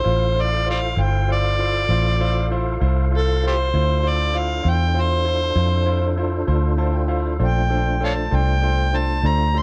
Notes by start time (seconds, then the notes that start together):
Already playing: C5
0.03 A1 E4 F4 A4 C5 F5
0.35 E4 F4 C5
0.41 D5
0.65 E4 F4 C5
0.70 C5 D5 F5
0.97 G1 E4 F4 C5 G5
1.28 E4 F4 C5
1.32 D5
1.59 E4 F4 C5
1.89 A1 E4 F4 C5
2.20 E4 F4 C5
2.51 E4 F4 C5
2.81 C2 E4 F4 C5
3.11 E4 F4 C5
3.17 A4
3.43 E4 F4 C5
3.47 G4 A4 C5
3.74 D2 D4 E4 F4 A4 C5
4.03 E4 F4 C5
4.08 D5
4.33 E4 F4 C5
4.37 F5
4.63 E2 E4 F4 C5
4.69 G5
4.94 E4 F4 C5
5.01 C5
5.24 E4 F4 C5
5.55 F2 E4 F4 C5
5.86 E4 F4 C5
6.17 E4 F4 C5
6.47 D2 E4 F4 C5
6.77 E4 F4 C5 A5
6.92 G5
7.08 E4 F4 C5 F5
7.39 A#1 A3 D4 F4 A4 C5
7.43 G5
7.70 D4 A4 C5
8.00 D4 A4 C5
8.05 C#5 F5 A5
8.31 C2 D4 A4 C5 G5
8.62 D4 A4 C5
8.93 D4 A4 C5 A5
9.23 D2 D4 A4 C5 A#5
9.54 D4 A4 C5
9.58 C6